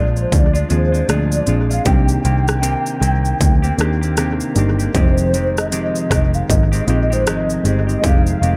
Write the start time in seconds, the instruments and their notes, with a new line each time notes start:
Already playing: picked electric bass A#1, clean electric guitar F3 G#3 D4 F4, reed electric piano C4 D4 F4 G#4, soft synth lead D5
0.17 soft synth lead C5, shaker
0.32 picked electric bass D2, soft synth lead D5, kick, closed hi-hat, shaker
0.53 clean electric guitar G#3 D4 F4, shaker
0.69 picked electric bass D#2, clean electric guitar F3 G#3 D4 F4, reed electric piano C4 D4 F4 G#4, soft synth lead C5, closed hi-hat, shaker
0.92 clean electric guitar G#3 D4 F4, shaker
1.08 picked electric bass D2, clean electric guitar A#2 F3 G#3 D4 F4, soft synth lead D5, cross-stick, closed hi-hat, shaker
1.32 shaker
1.46 picked electric bass A#1, clean electric guitar F3 G#3 D4 F4, reed electric piano C4 D4 F4 G#4, closed hi-hat, shaker
1.70 clean electric guitar G#3 D4 F4, soft synth lead F5, shaker
1.85 picked electric bass C2, clean electric guitar C3 D#3 A#3 C4 G4, reed electric piano A#3 D4 D#4 G4, soft synth lead G5, kick, closed hi-hat, shaker
2.08 shaker
2.23 picked electric bass C2, clean electric guitar D#3 A#3 C4 G4, closed hi-hat, shaker
2.48 cross-stick, shaker
2.62 clean electric guitar C3 D#3 A#3 C4 G4, closed hi-hat, shaker
2.86 shaker
3.01 picked electric bass C2, clean electric guitar D#3 A#3 C4 G4, closed hi-hat, shaker
3.25 shaker
3.40 picked electric bass D2, kick, closed hi-hat, shaker
3.62 clean electric guitar A#3 C4 G4, shaker
3.77 picked electric bass D#2, clean electric guitar D#3 A#3 C4 G4, reed electric piano A#3 D4 D#4 G4, cross-stick, closed hi-hat, shaker
4.01 clean electric guitar A#3 C4 G4, shaker
4.17 clean electric guitar C3 D#3 A#3 C4 G4, cross-stick, closed hi-hat, shaker
4.40 shaker
4.55 picked electric bass G1, clean electric guitar D#3 A#3 C4 G4, reed electric piano A#3 D4 D#4 G4, closed hi-hat, shaker
4.78 clean electric guitar A#3 C4 G4, shaker
4.93 picked electric bass F1, clean electric guitar F2 C3 D#3 G#3 C4 G4, reed electric piano G#3 C4 D#4 G4, soft synth lead C5, kick, closed hi-hat, shaker
5.18 shaker
5.33 clean electric guitar D#3 G#3 C4 G4, closed hi-hat, shaker
5.57 soft synth lead D#5, cross-stick, shaker
5.71 clean electric guitar F2 C3 D#3 G#3 C4 G4, soft synth lead D#5, closed hi-hat, shaker
5.95 shaker
6.10 picked electric bass F1, clean electric guitar D#3 G#3 C4 G4, kick, cross-stick, closed hi-hat, shaker
6.34 soft synth lead F5, shaker
6.50 picked electric bass G#1, soft synth lead D#5, kick, closed hi-hat, shaker
6.72 clean electric guitar D#3 G#3 C4 G4, shaker
6.86 picked electric bass A#1, clean electric guitar D#3 G#3 C4 G4, reed electric piano G#3 C4 D#4 F4, closed hi-hat, shaker
7.10 clean electric guitar D#3 G#3 C4 G4, soft synth lead C5, shaker
7.26 picked electric bass G#1, clean electric guitar F2 C3 D#3 G#3 C4 G4, soft synth lead D#5, cross-stick, closed hi-hat, shaker
7.50 shaker
7.64 picked electric bass G1, clean electric guitar D#3 G#3 C4 G4, reed electric piano G#3 C4 D#4 G4, closed hi-hat, shaker
7.87 clean electric guitar D#3 G#3 C4 G4, shaker
8.02 picked electric bass F1, clean electric guitar F2 C3 D#3 G#3 C4 G4, reed electric piano G#3 C4 D#4 G4, soft synth lead F5, kick, closed hi-hat, shaker
8.27 shaker
8.41 picked electric bass F1, clean electric guitar D#3 G#3 C4 G4, closed hi-hat, shaker